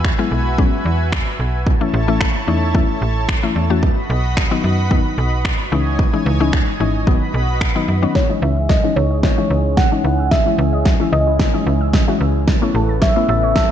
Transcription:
Already playing: fm bass E2, analog synth pad F#4 B4 E5 G#5
0.05 finger snap, kick
0.18 synth pluck F#3 G#3 B3 E4
0.31 fm bass B1
0.58 synth pluck F#3 G#3 B3 C#4, kick
0.85 fm bass E2
1.12 finger snap, kick
1.40 fm bass B1
1.66 analog synth pad E4 A4 C#5 A5, kick
1.81 synth pluck E3 A3 C#4 E4
1.94 fm bass A1
2.08 synth pluck E3 A3 C#4 E4
2.21 finger snap, kick
2.47 fm bass E2, synth pluck E3 A3 C#4 D#4
2.74 synth pluck E3 A3 C#4 E4, kick
3.02 fm bass A1
3.29 finger snap, kick
3.43 synth pluck E3 A3 C#4 E4
3.56 fm bass E2
3.70 synth pluck E3 A3 C#4 F#4
3.83 analog synth pad F#4 B4 D#5 B5, kick
4.10 fm bass B1
4.37 finger snap, kick
4.51 synth pluck D#3 F#3 B3 D#4
4.64 fm bass F#2
4.91 synth pluck D#3 F#3 B3 D#4, kick
5.18 fm bass B1
5.45 finger snap, kick
5.72 fm bass C#2, synth pluck E3 G#3 C#4 D#4, analog synth pad E3 C#5 D#5 G#5
5.99 kick
6.13 synth pluck E3 G#3 C#4 D#4
6.26 fm bass C#2
6.40 synth pluck E3 G#3 C#4 D#4
6.53 finger snap, kick
6.80 fm bass G#1, synth pluck E3 G#3 C#4 D#4
7.07 synth pluck D#3 F#3 B3 D#4, analog synth pad F#4 B4 B5, kick
7.34 fm bass B1
7.61 finger snap, kick
7.75 synth pluck D#3 F#3 B3 D#4
7.88 fm bass F#2
8.02 synth pluck D#3 F#3 B3 C#4
8.15 analog synth pad E3 G#3 C#4 G#4, soft synth lead C#5, synth pluck E6, kick, snare
8.29 synth pluck E3 G#3 C#4 D#4 D#5
8.42 fm bass C#2, synth pluck E4, soft synth lead E5
8.57 synth pluck E6
8.69 soft synth lead D#5, synth pluck D#5, kick, snare
8.83 synth pluck E3 G#3 C#4 D#4
8.96 fm bass C#2, soft synth lead C#5, synth pluck E6
9.11 synth pluck D#5
9.23 synth pluck E4, soft synth lead C#5, kick, snare
9.37 synth pluck E3 G#3 C#4 D#4 E6
9.50 fm bass C#2, synth pluck D#5
9.77 soft synth lead F#5, synth pluck E6, kick, snare
9.92 synth pluck E3 G#3 C#4 D#4
10.04 fm bass C#2, synth pluck E4
10.19 synth pluck E6
10.31 synth pluck D#5, soft synth lead E5, kick, snare
10.46 synth pluck E3 G#3 C#4 E4
10.58 fm bass C#2, synth pluck E6
10.73 synth pluck D#5
10.85 kick, snare
11.00 synth pluck E3 G#3 C#4 E4 E6
11.12 fm bass C#2, synth pluck D#5, soft synth lead D#5
11.27 synth pluck E4
11.39 synth pluck E6, kick, snare
11.54 synth pluck E3 G#3 C#4 D#4 D#5
11.66 fm bass C#2, synth pluck E4
11.81 synth pluck E6
11.93 synth pluck D#5, kick, snare
12.08 synth pluck E3 G#3 C#4 E4 F#4
12.21 fm bass C#2, synth pluck E6
12.47 analog synth pad C#3 A3 B3, synth pluck A6, kick, snare
12.62 synth pluck A3 B3 C#4 E4 C#5
12.75 fm bass A1, synth pluck A4
12.89 synth pluck A6
13.02 synth pluck C#5, soft synth lead E5, kick, snare
13.16 synth pluck A3 B3 C#4 E4
13.29 fm bass A1, soft synth lead E5, synth pluck A6
13.43 synth pluck C#5
13.56 synth pluck A4, soft synth lead E5, kick, snare

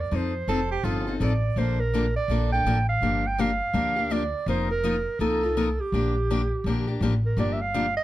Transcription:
0.00 clarinet D5
0.11 upright bass F2, steel-string acoustic guitar F3 C4 D#4 A4
0.15 clarinet C5
0.48 upright bass F1, steel-string acoustic guitar F3 C4 D#4 A4, soprano saxophone A4
0.71 soprano saxophone G4
0.83 upright bass G1, steel-string acoustic guitar F3 C4 D#4 A4, soprano saxophone F4
1.07 steel-string acoustic guitar C4 D#4 A4
1.20 upright bass A1, steel-string acoustic guitar F3 C4 D#4 A4, clarinet D5
1.56 upright bass A#1, steel-string acoustic guitar D3 F3 A#3 D4 A4, clarinet C5
1.80 clarinet A#4
1.94 steel-string acoustic guitar D3 F3 A#3 D4 A4
2.16 clarinet D5
2.28 upright bass A#1, steel-string acoustic guitar D3 F3 A#3 D4 A4
2.52 steel-string acoustic guitar A#3 D4 A4, clarinet G5
2.64 upright bass A1, steel-string acoustic guitar D3 F3 A#3 D4 A4
2.89 clarinet F5
3.01 upright bass G1, steel-string acoustic guitar D3 F3 A#3 D4 G4
3.27 clarinet G5
3.38 steel-string acoustic guitar D3 F3 A#3 D4 G4, clarinet F5
3.73 upright bass D2, steel-string acoustic guitar D3 F3 A#3 D4 G4
3.96 steel-string acoustic guitar A#3 D4 G4
4.10 steel-string acoustic guitar D3 F3 A#3 D4 G4, clarinet D5
4.46 upright bass F1, steel-string acoustic guitar F3 A#3 D#4 F4 A#4, clarinet C5
4.71 clarinet A#4
4.84 steel-string acoustic guitar F3 A#3 D#4 F4 A#4
5.19 upright bass C2, steel-string acoustic guitar F3 A#3 D#4 F4 A#4, clarinet A4
5.42 steel-string acoustic guitar D#4 F4 A#4
5.57 steel-string acoustic guitar F3 A#3 D#4 F4 A#4
5.80 clarinet G4
5.92 upright bass A#1, steel-string acoustic guitar D3 F3 A#3 D4 G4
6.30 steel-string acoustic guitar D3 F3 A#3 D4 G4
6.64 upright bass A#1, steel-string acoustic guitar D3 F3 A#3 D4 G4
6.87 steel-string acoustic guitar A#3 D4 G4
7.00 upright bass A1, steel-string acoustic guitar D3 F3 A#3 D4 G4
7.26 clarinet A#4
7.37 upright bass G1, steel-string acoustic guitar D3 F3 A#3 D4 G4, clarinet D5
7.53 clarinet E5
7.62 clarinet F5
7.74 steel-string acoustic guitar D3 F3 A#3 D4 G4
7.97 clarinet D#5

